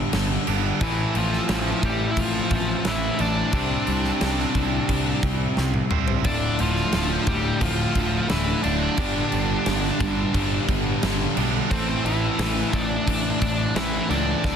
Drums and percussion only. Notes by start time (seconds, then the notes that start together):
0.13 snare, crash
0.47 crash
0.81 kick, crash
1.15 crash
1.33 snare
1.49 snare, crash
1.83 kick, crash
2.17 kick, crash
2.51 kick, crash
2.85 snare, crash
3.19 crash
3.53 kick, crash
3.87 crash
4.04 snare
4.21 snare, crash
4.38 snare
4.55 kick, crash
4.89 kick, crash
5.23 kick, crash
5.57 snare
5.74 high tom
5.91 mid tom
6.08 floor tom
6.24 kick, crash
6.59 crash
6.76 snare
6.92 snare, crash
7.27 kick, crash
7.61 kick, crash
7.95 kick, crash
8.29 snare, crash
8.64 crash
8.97 kick, crash
9.32 crash
9.66 snare, crash
9.84 snare
10.00 kick, crash
10.34 kick, crash
10.69 kick, crash
11.03 snare, crash
11.37 crash
11.71 kick, crash
12.06 crash
12.39 snare, crash
12.57 snare
12.73 kick, crash
13.08 kick, crash
13.42 kick, crash
13.76 snare, crash
14.11 crash
14.44 kick, snare